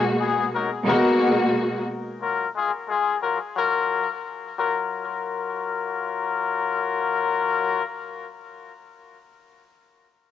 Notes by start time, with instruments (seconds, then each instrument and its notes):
Already playing: string section B2 G#3 A#3 F#4
0.19 trumpet section B3 G#4
0.53 trumpet section F#3 D#4 A#4
0.84 string section B2 G#3 A#3 F#4, trumpet section F#3 D#4 A#4
2.20 trumpet section F#3 F4 A#4
2.55 trumpet section G#3 F4 G#4
2.88 trumpet section G#3 F4 G#4
3.22 trumpet section F#3 F4 A#4
3.56 trumpet section F#3 F4 A#4
4.57 trumpet section F#3 F4 A#4